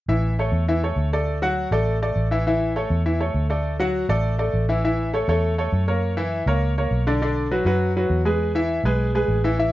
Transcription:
0.08 fingered electric bass A1, grand piano E3 E4 E5
0.39 grand piano A3 A4 C#5
0.52 fingered electric bass E2
0.68 grand piano E3 E4 E5
0.83 grand piano A3 A4 C#5
0.96 fingered electric bass D2
1.13 grand piano A3 A4 D5
1.42 grand piano F#3 F#4 F#5
1.71 fingered electric bass A1, grand piano A3 A4 D5
2.02 grand piano A3 A4 D5
2.16 fingered electric bass A1
2.31 grand piano E3 E4 E5
2.47 grand piano E3 E4 E5
2.76 grand piano A3 A4 C#5
2.90 fingered electric bass E2
3.06 grand piano E3 E4 E5
3.20 grand piano A3 A4 C#5
3.34 fingered electric bass D2
3.50 grand piano A3 A4 D5
3.80 grand piano F#3 F#4 F#5
4.09 fingered electric bass A1, grand piano A3 A4 D5
4.38 grand piano A3 A4 D5
4.53 fingered electric bass A1
4.69 grand piano E3 E4 E5
4.84 grand piano E3 E4 E5
5.13 grand piano A3 A4 C#5
5.28 fingered electric bass E2, grand piano A3 A4 C#5
5.58 grand piano A3 A4 C#5
5.72 fingered electric bass F#2
5.88 grand piano A#3 A#4 C#5
6.17 grand piano E3 E4 E5
6.46 fingered electric bass C#2, grand piano A#3 A#4 C#5
6.78 grand piano A#3 A#4 C#5
6.91 fingered electric bass B1
7.07 grand piano D3 D4 D5
7.22 grand piano D3 D4 D5
7.51 grand piano F#3 F#4 B4
7.65 fingered electric bass F#2, grand piano F#3 F#4 B4
7.97 grand piano F#3 F#4 B4
8.10 fingered electric bass E2
8.25 grand piano G#3 G#4 B4
8.55 grand piano E3 E4 E5
8.84 fingered electric bass B1, grand piano G#3 G#4 B4
9.15 grand piano G#3 G#4 B4
9.28 fingered electric bass A1
9.44 grand piano E3 E4 E5
9.59 grand piano E3 E4 E5

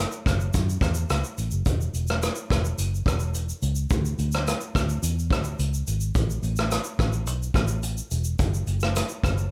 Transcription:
0.12 shaker
0.26 fingered electric bass F#1, kick, cross-stick, closed hi-hat, shaker
0.40 shaker
0.54 fingered electric bass F#2, kick, closed hi-hat, shaker
0.69 shaker
0.81 fingered electric bass E2, kick, cross-stick, closed hi-hat, shaker
0.94 shaker
1.10 fingered electric bass C#2, cross-stick, closed hi-hat, shaker
1.24 shaker
1.38 fingered electric bass A1, closed hi-hat, shaker
1.51 fingered electric bass F#1, shaker
1.66 fingered electric bass E1, kick, closed hi-hat, shaker
1.81 shaker
1.94 fingered electric bass E1, closed hi-hat, shaker
2.07 cross-stick, shaker
2.23 cross-stick, closed hi-hat, shaker
2.35 shaker
2.50 fingered electric bass E1, kick, cross-stick, closed hi-hat, shaker
2.65 shaker
2.78 fingered electric bass F#1, closed hi-hat, shaker
2.94 shaker
3.06 fingered electric bass E1, kick, cross-stick, closed hi-hat, shaker
3.19 shaker
3.34 closed hi-hat, shaker
3.49 shaker
3.62 fingered electric bass C#2, closed hi-hat, shaker
3.75 shaker
3.90 fingered electric bass D2, kick, closed hi-hat, shaker
4.05 shaker
4.19 fingered electric bass D2, closed hi-hat, shaker
4.32 cross-stick, shaker
4.47 cross-stick, closed hi-hat, shaker
4.61 shaker
4.75 fingered electric bass D2, kick, cross-stick, closed hi-hat, shaker
4.89 shaker
5.03 fingered electric bass E2, closed hi-hat, shaker
5.19 shaker
5.30 fingered electric bass D2, kick, cross-stick, closed hi-hat, shaker
5.44 shaker
5.59 fingered electric bass C#2, closed hi-hat, shaker
5.74 shaker
5.87 fingered electric bass G#1, closed hi-hat, shaker
6.00 shaker
6.15 fingered electric bass A1, kick, closed hi-hat, shaker
6.30 shaker
6.43 fingered electric bass A1, closed hi-hat, shaker
6.56 cross-stick, shaker
6.71 cross-stick, closed hi-hat, shaker
6.84 shaker
6.99 fingered electric bass A1, kick, cross-stick, closed hi-hat, shaker
7.13 shaker
7.27 fingered electric bass B1, closed hi-hat, shaker
7.43 shaker
7.54 fingered electric bass A1, kick, cross-stick, closed hi-hat, shaker
7.68 shaker
7.83 closed hi-hat, shaker
7.97 shaker
8.11 fingered electric bass E1, closed hi-hat, shaker
8.24 shaker
8.39 fingered electric bass F#1, kick, closed hi-hat, shaker
8.54 shaker
8.67 fingered electric bass F#1, closed hi-hat, shaker
8.80 cross-stick, shaker
8.96 cross-stick, closed hi-hat, shaker
9.09 shaker
9.24 fingered electric bass F#1, kick, cross-stick, closed hi-hat, shaker
9.38 shaker

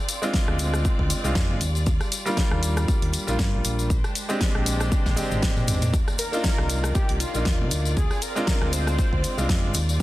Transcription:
Already playing: string section C4 F4 D5
0.09 open hi-hat, tambourine, cabasa
0.22 grand piano G#3 C4 D4 F4, tambourine, cabasa
0.34 kick, snare, tambourine, cabasa
0.48 fingered electric bass D2, cross-stick
0.59 open hi-hat, tambourine, cabasa
0.73 cross-stick, tambourine, cabasa
0.85 kick, tambourine, cabasa
0.99 fingered electric bass D2, kick
1.10 open hi-hat, tambourine, cabasa
1.24 fingered electric bass C2, grand piano G#3 C4 D4 F4, tambourine, cabasa
1.35 fingered electric bass F2, kick, snare, tambourine, cabasa
1.50 fingered electric bass G#1
1.61 fingered electric bass D#2, string section G3, open hi-hat, tambourine, cabasa
1.75 tambourine, cabasa
1.86 kick, tambourine, cabasa
2.01 cross-stick, tambourine
2.12 open hi-hat, tambourine, cabasa
2.25 grand piano G3 A#3 D4 F4, tambourine, cabasa
2.37 kick, snare, tambourine, cabasa
2.51 fingered electric bass D#2, cross-stick
2.63 open hi-hat, tambourine, cabasa
2.77 cross-stick, tambourine, cabasa
2.88 muted fingered electric bass stroke, kick, tambourine, cabasa
3.02 fingered electric bass D#2, open hi-hat
3.13 open hi-hat, tambourine, cabasa
3.27 fingered electric bass A#1, grand piano G3 A#3 D4 F4, tambourine, cabasa
3.39 fingered electric bass G2, kick, snare, tambourine, cabasa
3.53 fingered electric bass A#1
3.65 fingered electric bass A#1, open hi-hat, tambourine, cabasa
3.79 tambourine, cabasa
3.90 string section G#3 D4 G4 C5, kick, tambourine, cabasa
4.04 cross-stick, tambourine
4.15 open hi-hat, tambourine, cabasa
4.29 grand piano G#3 C4 D4 G4, tambourine, cabasa
4.41 kick, snare, tambourine, cabasa
4.55 fingered electric bass A#1, cross-stick
4.66 open hi-hat, tambourine, cabasa
4.80 cross-stick, tambourine, cabasa
4.92 kick, high tom, tambourine, cabasa
5.06 fingered electric bass A#1, kick, snare, high tom, tambourine
5.16 grand piano G#3 C4 D4 G4, open hi-hat, high tom, tambourine, cabasa
5.31 fingered electric bass G#1, mid tom, tambourine, cabasa
5.42 kick, snare, mid tom, tambourine, cabasa
5.57 fingered electric bass A#2, mid tom, tambourine
5.68 fingered electric bass G#1, mid tom, open hi-hat, tambourine, cabasa
5.82 fingered electric bass A#2, mid tom, open hi-hat, tambourine, cabasa
5.93 string section D#3 A#3 F4 D5, kick, tambourine, cabasa
6.08 cross-stick, tambourine
6.19 analog synth lead A#4, open hi-hat, tambourine, cabasa
6.32 grand piano A#3 D4 D#4 F4, tambourine, cabasa
6.44 kick, snare, tambourine, cabasa
6.58 fingered electric bass C2, cross-stick
6.70 open hi-hat, tambourine, cabasa
6.84 cross-stick, tambourine, cabasa
6.94 analog synth lead G4, muted fingered electric bass stroke, kick, tambourine, cabasa
7.09 fingered electric bass C2, open hi-hat
7.20 analog synth lead F4, open hi-hat, tambourine, cabasa
7.34 fingered electric bass A#1, grand piano A#3 D4 D#4 F4, tambourine, cabasa
7.45 fingered electric bass D#2, kick, snare, tambourine, cabasa
7.60 fingered electric bass C3
7.71 fingered electric bass D2, open hi-hat, tambourine, cabasa
7.85 tambourine, cabasa
7.97 string section C4, analog synth lead G#4, kick, tambourine, cabasa
8.11 cross-stick, tambourine
8.22 analog synth lead A#4, open hi-hat, tambourine, cabasa
8.35 grand piano G#3 C4 D4 F4, tambourine, cabasa
8.47 kick, snare, tambourine, cabasa
8.62 fingered electric bass D2, cross-stick
8.73 analog synth lead C5, open hi-hat, tambourine, cabasa
8.87 cross-stick, tambourine, cabasa
8.98 kick, tambourine, cabasa
9.13 fingered electric bass D2, kick
9.24 open hi-hat, tambourine, cabasa
9.38 fingered electric bass C2, grand piano G#3 C4 D4 F4, tambourine, cabasa
9.49 fingered electric bass F2, kick, snare, tambourine, cabasa
9.64 fingered electric bass G#1
9.74 fingered electric bass D#2, string section G3, open hi-hat, tambourine, cabasa
9.89 tambourine, cabasa

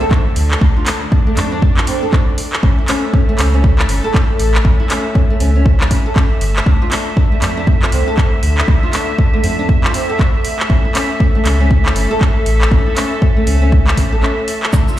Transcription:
Already playing: string section D3 A3 E5, impact
0.01 nylon-string guitar A4
0.11 nylon-string guitar D4, kick, clap
0.36 sub bass D2, open hi-hat
0.51 clap
0.61 sub bass D2, string section D4, nylon-string guitar D4, kick
0.77 nylon-string guitar F4
0.86 nylon-string guitar D4, clap, open hi-hat
1.12 nylon-string guitar D4, kick
1.27 nylon-string guitar A3
1.37 sub bass F2, nylon-string guitar D4, clap, open hi-hat
1.52 nylon-string guitar D4
1.62 kick
1.77 nylon-string guitar F4, clap
1.87 nylon-string guitar C4, open hi-hat
2.03 nylon-string guitar A4
2.13 nylon-string guitar D4, kick, clap
2.38 open hi-hat
2.53 clap
2.63 sub bass A1, nylon-string guitar C#4, string section A4 E5, kick
2.78 nylon-string guitar E4
2.88 nylon-string guitar C#4, clap, open hi-hat
3.14 nylon-string guitar C#4, kick
3.29 nylon-string guitar A3
3.39 sub bass C#2, nylon-string guitar C#4, clap, open hi-hat
3.54 nylon-string guitar C#4
3.64 kick
3.79 nylon-string guitar E4, clap
3.89 sub bass G1, nylon-string guitar C#4, open hi-hat
4.04 nylon-string guitar A4
4.14 nylon-string guitar C#4, kick, clap
4.39 sub bass A1, open hi-hat
4.55 clap
4.65 sub bass A1, nylon-string guitar C#4, kick
4.80 nylon-string guitar E4
4.90 nylon-string guitar C#4, clap, open hi-hat
5.15 nylon-string guitar C#4, kick
5.30 nylon-string guitar A3
5.40 sub bass C#2, nylon-string guitar C#4, open hi-hat
5.56 nylon-string guitar C#4
5.66 kick
5.81 nylon-string guitar E4, clap
5.91 nylon-string guitar C#4, kick, open hi-hat
6.06 nylon-string guitar A4
6.16 nylon-string guitar C#4, kick, clap
6.41 sub bass G1, open hi-hat
6.56 clap
6.66 sub bass D2, string section D3, nylon-string guitar D4, kick
6.82 nylon-string guitar F4
6.92 nylon-string guitar D4, clap, open hi-hat
7.17 nylon-string guitar D4, kick
7.32 nylon-string guitar A3
7.42 sub bass F2, nylon-string guitar D4, clap, open hi-hat
7.57 nylon-string guitar D4
7.67 kick
7.82 nylon-string guitar F4, clap
7.92 sub bass C2, nylon-string guitar C4, open hi-hat
8.08 nylon-string guitar A4
8.18 nylon-string guitar D4, kick, clap
8.43 sub bass D2, open hi-hat
8.58 clap
8.68 sub bass D2, nylon-string guitar D4, kick
8.83 nylon-string guitar F4
8.93 nylon-string guitar D4, clap, open hi-hat
9.18 nylon-string guitar D4, kick
9.33 nylon-string guitar A3
9.44 sub bass F2, nylon-string guitar D4, open hi-hat
9.59 nylon-string guitar D4
9.69 kick
9.84 nylon-string guitar F4, clap
9.94 nylon-string guitar C4, open hi-hat
10.09 nylon-string guitar A4
10.19 nylon-string guitar D4, kick, clap
10.45 open hi-hat
10.60 clap
10.70 sub bass A1, string section A3 A4, nylon-string guitar C#4, kick
10.85 nylon-string guitar E4
10.95 nylon-string guitar C#4, clap, open hi-hat
11.20 nylon-string guitar C#4, kick
11.35 nylon-string guitar A3
11.45 sub bass C#2, nylon-string guitar C#4, clap, open hi-hat
11.60 nylon-string guitar C#4
11.71 kick
11.86 nylon-string guitar E4, clap
11.96 sub bass G1, nylon-string guitar C#4, open hi-hat
12.11 nylon-string guitar A4
12.21 nylon-string guitar C#4, kick, clap
12.46 sub bass A1, open hi-hat
12.61 clap
12.71 sub bass A1, nylon-string guitar C#4, kick
12.86 nylon-string guitar E4
12.97 nylon-string guitar C#4, clap, open hi-hat
13.22 nylon-string guitar C#4, kick
13.37 nylon-string guitar A3
13.47 sub bass C#2, nylon-string guitar C#4, open hi-hat
13.62 nylon-string guitar C#4
13.72 kick
13.87 nylon-string guitar E4, clap
13.97 sub bass A1, nylon-string guitar C#4, kick, open hi-hat
14.12 nylon-string guitar A4
14.22 nylon-string guitar C#4, clap
14.48 open hi-hat
14.63 clap
14.73 sub bass D2, string section D3 E5, nylon-string guitar D4, kick, darbuka tek, darbuka dum, shaker
14.88 nylon-string guitar F4, shaker

